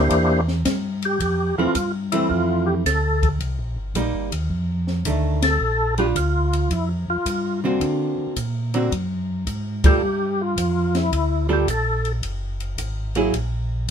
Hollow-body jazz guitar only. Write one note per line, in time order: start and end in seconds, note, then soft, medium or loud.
1.58 1.74 E3 medium
1.58 1.74 A3 medium
1.58 1.75 C4 medium
2.13 2.82 E3 medium
2.13 2.82 A3 medium
2.13 2.83 C4 medium
3.96 4.29 G3 medium
3.96 4.29 A#3 medium
3.96 4.30 D#4 medium
5.06 5.39 D#3 medium
5.06 5.40 A3 medium
5.06 5.40 D4 medium
5.98 6.14 G3 medium
5.98 6.15 D4 medium
5.98 6.15 F4 medium
7.64 8.33 D3 medium
7.64 8.34 A#3 medium
7.64 8.34 C4 medium
7.64 8.34 F#4 medium
8.74 8.90 D3 medium
8.74 8.90 A#3 medium
8.74 8.90 C4 medium
8.74 8.91 F#4 medium
9.84 10.00 G3 medium
9.84 10.01 A#3 medium
9.84 10.01 F4 medium
9.84 10.01 A4 medium
11.49 11.66 G3 medium
11.49 11.66 A#3 medium
11.49 11.66 F4 medium
11.49 11.66 A4 medium
13.16 13.32 F#3 medium
13.16 13.32 A#3 medium
13.16 13.32 E4 medium
13.16 13.33 G#4 medium